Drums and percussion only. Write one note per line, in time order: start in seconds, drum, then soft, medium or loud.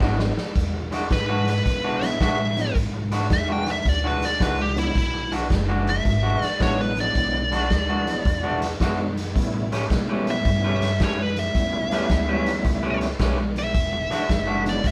0.00 kick medium
0.00 snare medium
0.19 snare medium
0.38 snare medium
0.56 kick medium
0.56 closed hi-hat medium
0.92 snare soft
0.92 closed hi-hat soft
1.11 kick medium
1.11 snare loud
1.11 closed hi-hat medium
1.47 snare soft
1.47 closed hi-hat medium
1.66 kick medium
1.66 snare soft
1.66 closed hi-hat medium
2.02 snare soft
2.02 closed hi-hat medium
2.20 kick medium
2.20 snare loud
2.20 closed hi-hat medium
2.57 snare soft
2.57 closed hi-hat medium
2.75 kick medium
2.75 closed hi-hat medium
3.12 snare soft
3.12 closed hi-hat medium
3.30 kick medium
3.30 snare loud
3.30 closed hi-hat medium
3.67 snare soft
3.67 closed hi-hat medium
3.85 kick medium
3.85 closed hi-hat medium
4.22 snare soft
4.22 closed hi-hat medium
4.40 kick medium
4.40 snare loud
4.40 closed hi-hat medium
4.77 snare soft
4.77 closed hi-hat medium
4.95 kick medium
4.95 closed hi-hat medium
5.32 snare soft
5.32 closed hi-hat medium
5.50 kick medium
5.50 snare loud
5.50 closed hi-hat medium
5.87 snare soft
5.87 closed hi-hat medium
6.05 kick medium
6.05 closed hi-hat medium
6.42 snare soft
6.42 closed hi-hat medium
6.60 kick medium
6.60 snare loud
6.60 closed hi-hat medium
6.97 snare soft
6.97 closed hi-hat medium
7.15 kick medium
7.15 closed hi-hat medium
7.52 snare soft
7.52 closed hi-hat medium
7.70 kick medium
7.70 snare medium
7.70 closed hi-hat medium
8.07 snare soft
8.07 closed hi-hat medium
8.25 kick medium
8.25 closed hi-hat medium
8.62 snare soft
8.62 closed hi-hat medium
8.80 kick medium
8.80 snare loud
8.80 closed hi-hat medium
9.17 snare soft
9.17 closed hi-hat medium
9.36 kick medium
9.36 closed hi-hat medium
9.72 snare soft
9.72 closed hi-hat medium
9.90 kick medium
9.90 snare loud
9.90 closed hi-hat medium
10.27 snare soft
10.27 closed hi-hat medium
10.45 kick medium
10.45 closed hi-hat medium
10.82 snare soft
10.82 closed hi-hat medium
11.00 kick medium
11.00 snare loud
11.00 closed hi-hat medium
11.36 snare soft
11.36 closed hi-hat medium
11.55 kick medium
11.55 closed hi-hat medium
11.91 snare soft
11.91 closed hi-hat medium
12.09 kick medium
12.09 snare medium
12.09 closed hi-hat medium
12.46 snare soft
12.46 closed hi-hat medium
12.65 kick medium
12.65 snare soft
12.65 closed hi-hat medium
13.01 snare soft
13.01 closed hi-hat medium
13.19 kick medium
13.19 snare loud
13.19 closed hi-hat medium
13.56 snare soft
13.56 closed hi-hat medium
13.75 kick medium
13.75 closed hi-hat medium
14.11 snare soft
14.11 closed hi-hat medium
14.29 kick medium
14.29 snare loud
14.29 closed hi-hat medium
14.66 snare soft
14.66 closed hi-hat medium
14.84 kick medium
14.84 snare soft
14.84 closed hi-hat medium